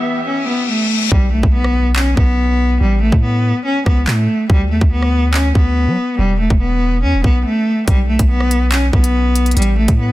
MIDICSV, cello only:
0, 0, Header, 1, 2, 480
1, 0, Start_track
1, 0, Tempo, 422535
1, 1268, Time_signature, 4, 2, 24, 8
1, 11496, End_track
2, 0, Start_track
2, 0, Title_t, "Cello"
2, 0, Program_c, 0, 42
2, 0, Note_on_c, 0, 59, 75
2, 275, Note_off_c, 0, 59, 0
2, 305, Note_on_c, 0, 61, 78
2, 508, Note_off_c, 0, 61, 0
2, 546, Note_on_c, 0, 59, 81
2, 749, Note_off_c, 0, 59, 0
2, 788, Note_on_c, 0, 57, 88
2, 1239, Note_off_c, 0, 57, 0
2, 1266, Note_on_c, 0, 55, 105
2, 1469, Note_off_c, 0, 55, 0
2, 1506, Note_on_c, 0, 57, 78
2, 1709, Note_off_c, 0, 57, 0
2, 1747, Note_on_c, 0, 59, 85
2, 2199, Note_off_c, 0, 59, 0
2, 2233, Note_on_c, 0, 61, 86
2, 2433, Note_off_c, 0, 61, 0
2, 2468, Note_on_c, 0, 59, 84
2, 3145, Note_off_c, 0, 59, 0
2, 3192, Note_on_c, 0, 55, 105
2, 3392, Note_off_c, 0, 55, 0
2, 3433, Note_on_c, 0, 57, 83
2, 3633, Note_off_c, 0, 57, 0
2, 3672, Note_on_c, 0, 59, 76
2, 4121, Note_off_c, 0, 59, 0
2, 4150, Note_on_c, 0, 61, 84
2, 4351, Note_off_c, 0, 61, 0
2, 4389, Note_on_c, 0, 59, 79
2, 4591, Note_off_c, 0, 59, 0
2, 4634, Note_on_c, 0, 57, 89
2, 5082, Note_off_c, 0, 57, 0
2, 5113, Note_on_c, 0, 55, 113
2, 5313, Note_off_c, 0, 55, 0
2, 5353, Note_on_c, 0, 57, 78
2, 5553, Note_off_c, 0, 57, 0
2, 5587, Note_on_c, 0, 59, 87
2, 6038, Note_off_c, 0, 59, 0
2, 6065, Note_on_c, 0, 61, 85
2, 6268, Note_off_c, 0, 61, 0
2, 6308, Note_on_c, 0, 59, 84
2, 6985, Note_off_c, 0, 59, 0
2, 7023, Note_on_c, 0, 55, 107
2, 7227, Note_off_c, 0, 55, 0
2, 7267, Note_on_c, 0, 57, 77
2, 7469, Note_off_c, 0, 57, 0
2, 7502, Note_on_c, 0, 59, 78
2, 7956, Note_off_c, 0, 59, 0
2, 7985, Note_on_c, 0, 61, 80
2, 8188, Note_off_c, 0, 61, 0
2, 8228, Note_on_c, 0, 59, 78
2, 8430, Note_off_c, 0, 59, 0
2, 8468, Note_on_c, 0, 57, 90
2, 8919, Note_off_c, 0, 57, 0
2, 8945, Note_on_c, 0, 55, 107
2, 9148, Note_off_c, 0, 55, 0
2, 9188, Note_on_c, 0, 57, 77
2, 9390, Note_off_c, 0, 57, 0
2, 9426, Note_on_c, 0, 59, 87
2, 9878, Note_off_c, 0, 59, 0
2, 9914, Note_on_c, 0, 61, 84
2, 10113, Note_off_c, 0, 61, 0
2, 10147, Note_on_c, 0, 59, 81
2, 10824, Note_off_c, 0, 59, 0
2, 10871, Note_on_c, 0, 55, 109
2, 11072, Note_off_c, 0, 55, 0
2, 11111, Note_on_c, 0, 57, 82
2, 11312, Note_off_c, 0, 57, 0
2, 11349, Note_on_c, 0, 59, 81
2, 11496, Note_off_c, 0, 59, 0
2, 11496, End_track
0, 0, End_of_file